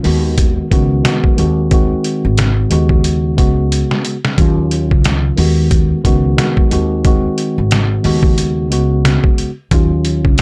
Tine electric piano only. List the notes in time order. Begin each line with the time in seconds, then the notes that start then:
0.03 D#3 G#3 B3 F#4
0.70 D#3 G#3 B3 F#4
1.03 D#3 G#3 B3 F#4
1.36 D#3 G#3 C4 F#4
1.71 D#3 G#3 C4 F#4
2.70 C#3 G#3 B3 F#4
3.36 C#3 G#3 B3 F#4
4.38 D#3 F#3 C#4 F4
5.37 D#3 G#3 B3 F#4
6.04 D#3 G#3 B3 F#4
6.36 D#3 G#3 B3 F#4
6.70 D#3 G#3 C4 F#4
7.04 D#3 G#3 C4 F#4
8.03 C#3 G#3 B3 F#4
8.70 C#3 G#3 B3 F#4
9.72 D#3 F#3 C#4 F4